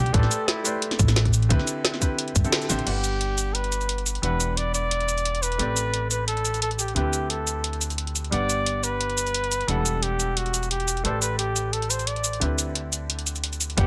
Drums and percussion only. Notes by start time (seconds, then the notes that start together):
0.06 closed hi-hat
0.14 kick, closed hi-hat
0.23 snare
0.31 closed hi-hat, shaker
0.48 snare, closed hi-hat
0.65 closed hi-hat, shaker
0.82 closed hi-hat
0.91 snare, closed hi-hat
0.99 kick, closed hi-hat, shaker
1.08 snare, closed hi-hat, shaker
1.16 snare, closed hi-hat
1.25 kick, closed hi-hat
1.33 closed hi-hat, shaker
1.42 closed hi-hat
1.50 kick, closed hi-hat
1.60 snare
1.67 closed hi-hat, shaker
1.85 snare, closed hi-hat
1.94 snare
2.02 kick, closed hi-hat, shaker
2.19 closed hi-hat
2.28 closed hi-hat
2.36 kick, closed hi-hat, shaker
2.45 closed hi-hat, shaker
2.52 snare, closed hi-hat
2.62 closed hi-hat, shaker
2.70 snare, closed hi-hat, shaker
2.79 closed hi-hat
2.87 closed hi-hat, crash
3.04 closed hi-hat, shaker
3.21 closed hi-hat
3.38 closed hi-hat, shaker
3.55 closed hi-hat
3.64 closed hi-hat
3.72 closed hi-hat, shaker
3.81 closed hi-hat, shaker
3.89 closed hi-hat
3.98 closed hi-hat
4.06 closed hi-hat, shaker
4.15 closed hi-hat
4.23 closed hi-hat
4.40 closed hi-hat, shaker
4.57 closed hi-hat
4.74 closed hi-hat, shaker
4.91 closed hi-hat
5.00 closed hi-hat
5.08 closed hi-hat, shaker
5.18 closed hi-hat, shaker
5.25 closed hi-hat
5.35 closed hi-hat
5.43 closed hi-hat, shaker
5.52 closed hi-hat
5.59 closed hi-hat
5.77 closed hi-hat, shaker
5.94 closed hi-hat
6.11 closed hi-hat, shaker
6.28 closed hi-hat
6.37 closed hi-hat
6.45 closed hi-hat, shaker
6.54 closed hi-hat, shaker
6.62 closed hi-hat
6.71 closed hi-hat
6.79 closed hi-hat, shaker
6.88 closed hi-hat
6.96 closed hi-hat
7.13 closed hi-hat, shaker
7.30 closed hi-hat
7.47 closed hi-hat, shaker
7.64 closed hi-hat
7.73 closed hi-hat
7.81 closed hi-hat, shaker
7.90 closed hi-hat, shaker
7.98 closed hi-hat
8.07 closed hi-hat
8.16 closed hi-hat, shaker
8.24 closed hi-hat
8.32 closed hi-hat
8.49 closed hi-hat, shaker
8.66 closed hi-hat
8.84 closed hi-hat, shaker
9.01 closed hi-hat
9.10 closed hi-hat
9.18 closed hi-hat, shaker
9.27 closed hi-hat, shaker
9.34 closed hi-hat
9.44 closed hi-hat
9.52 closed hi-hat, shaker
9.61 closed hi-hat
9.68 closed hi-hat
9.86 closed hi-hat, shaker
10.03 closed hi-hat
10.20 closed hi-hat, shaker
10.37 closed hi-hat
10.46 closed hi-hat
10.54 closed hi-hat, shaker
10.63 closed hi-hat, shaker
10.71 closed hi-hat
10.80 closed hi-hat
10.88 closed hi-hat, shaker
10.97 closed hi-hat
11.05 closed hi-hat
11.22 closed hi-hat, shaker
11.39 closed hi-hat
11.56 closed hi-hat, shaker
11.73 closed hi-hat
11.82 closed hi-hat
11.90 closed hi-hat, shaker
11.99 closed hi-hat, shaker
12.07 closed hi-hat
12.16 closed hi-hat
12.24 closed hi-hat, shaker
12.33 closed hi-hat
12.41 closed hi-hat
12.58 closed hi-hat, shaker
12.75 closed hi-hat
12.93 closed hi-hat, shaker
13.10 closed hi-hat
13.19 closed hi-hat
13.27 closed hi-hat, shaker
13.36 closed hi-hat, shaker
13.44 closed hi-hat
13.53 closed hi-hat, shaker
13.61 closed hi-hat, shaker
13.70 closed hi-hat
13.78 kick, closed hi-hat